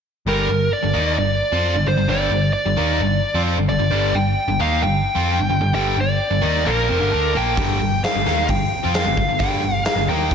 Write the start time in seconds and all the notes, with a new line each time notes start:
0.26 G1 G2 D3 G3 A#4
0.49 G1 G2 D3
0.73 D5
0.83 G1 G2 D3
0.94 D#2 D#3 A#3 D#4
1.17 G1 G2 D3 D5
1.52 F2 F3 C4 F4
1.74 G1 G2 D3
1.86 G1 G2 D3 C5
1.97 G1 G2 D3
2.08 G1 G2 D3 G3 D5
2.31 G1 G2 D3
2.53 D5
2.66 G1 G2 D3
2.76 D#2 D#3 A#3 D#4
2.99 G1 G2 D3
3.34 F2 F3 C4 F4
3.57 G1 G2 D3
3.69 G1 G2 D3 D5
3.79 G1 G2 D3
3.91 G1 G2 D3 G3
4.14 G1 G2 D3 G5
4.47 G1 G2 D3
4.59 D#2 D#3 A#3 D#4 F5
4.82 G1 G2 D3 G5
5.15 F2 F3 C4 F4
5.38 G1 G2 D3
5.50 G1 G2 D3
5.61 G1 G2 D3
5.73 G1 G2 D3 G3 G5
5.96 G1 G2 D3
6.01 D5
6.31 G1 G2 D3
6.41 D#2 D#3 A#3 D#4
6.65 A#1 A#2 F3 A#3 A#4
6.88 F1 F2 C3
6.99 G1 G2 D3
7.11 D2 D3 A3 D4
7.34 A#1 A#2 F3 A#3 G5
7.57 G1 G2 D3 G3, kick, open hi-hat
7.80 G1 G2 D3
8.04 F5, snare, open hi-hat
8.15 G1 G2 D3
8.26 D#2 D#3 A#3 D#4, snare
8.48 G1 G2 D3 G5, kick, open hi-hat
8.83 F2 F3 C4 F4
8.94 F5, snare, open hi-hat
9.05 G1 G2 D3
9.17 G1 G2 D3, kick
9.28 G1 G2 D3
9.39 G1 G2 D3 G3 G5, kick, open hi-hat
9.62 G1 G2 D3
9.85 F5, snare, open hi-hat
9.95 G1 G2 D3
10.07 D#2 D#3 A#3 D#4 G5
10.31 G1, kick, open hi-hat